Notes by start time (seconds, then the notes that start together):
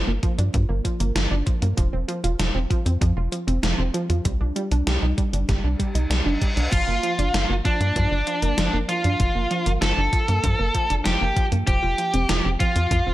0.08 G1 A#3
0.23 F3, kick, closed hi-hat
0.38 G2 D4, closed hi-hat
0.54 G2 F3, kick, closed hi-hat
0.69 G1 A#3
0.85 F3, kick, closed hi-hat
1.00 G1 A#3, closed hi-hat
1.15 G1 F3, snare, closed hi-hat
1.31 G1 D4
1.46 F3, kick, closed hi-hat
1.62 G2 A#3, closed hi-hat
1.77 F1 F3, kick, closed hi-hat
1.93 F1 C4
2.08 F3, closed hi-hat
2.24 F1 F4, closed hi-hat
2.39 F1 F3, snare, closed hi-hat
2.55 F1 C4
2.70 F3, kick, closed hi-hat
2.86 F2 C4, closed hi-hat
3.01 F2 F3, kick, closed hi-hat
3.17 F1 F4
3.32 F3, closed hi-hat
3.47 F1 C4, closed hi-hat
3.63 F1 F3, snare, closed hi-hat
3.78 F1 C4
3.94 F3, closed hi-hat
4.10 F2 F4, closed hi-hat
4.25 C2 G3, kick, closed hi-hat
4.41 C2 D4
4.56 G3, closed hi-hat
4.71 C2 D4, closed hi-hat
4.87 C2 G3, snare, closed hi-hat
5.02 C2 D#4
5.18 G3, kick, closed hi-hat
5.33 G1 D4, closed hi-hat
5.49 G1 G3, kick, snare, closed hi-hat, reverse cymbal
5.64 C2 D4
5.79 G3, kick, closed hi-hat
5.95 C2 D#4, closed hi-hat
6.10 C2 G3, snare, closed hi-hat
6.26 G1 D4
6.41 G3, kick, closed hi-hat
6.57 C2 D4, closed hi-hat
6.72 G1 F3 F4, kick, closed hi-hat, crash
6.88 G1 A#3
7.03 F3, closed hi-hat
7.19 G1 D4, closed hi-hat
7.34 G1 F3, snare, closed hi-hat
7.50 G1 A#3
7.65 F3 D4, kick, closed hi-hat
7.80 G2 A#3, closed hi-hat
7.96 G2 F3, kick, closed hi-hat
8.11 G1 D4
8.27 F3, closed hi-hat
8.42 G1 A#3, closed hi-hat
8.58 G1 F3, snare, closed hi-hat
8.73 G1 A#3
8.89 F3 F4, closed hi-hat
9.04 G2 D4, closed hi-hat
9.20 G1 F3, kick, closed hi-hat
9.35 G1 A#3
9.51 F3, closed hi-hat
9.66 G1 A#3, closed hi-hat
9.82 G1 F3 A4, snare, closed hi-hat
9.97 G1 D4
10.13 F3, kick, closed hi-hat
10.28 G2 A#3, closed hi-hat
10.44 G2 F3, kick, closed hi-hat
10.59 G1 A#3
10.74 F3, kick, closed hi-hat
10.90 G1 D4, closed hi-hat
11.05 G1 F3 G4, snare, closed hi-hat
11.21 G1 A#3
11.36 F3, kick, closed hi-hat
11.52 G2 A#3, closed hi-hat
11.67 F1 F3 G4, kick, closed hi-hat
11.83 F1 F4
11.98 F3, closed hi-hat
12.14 F1 C4, closed hi-hat
12.29 F1 F3, snare, closed hi-hat
12.45 F1 C4
12.60 F3 F4, kick, closed hi-hat
12.76 F2 F4, closed hi-hat
12.91 F2 F3, kick, closed hi-hat
13.07 F1 C4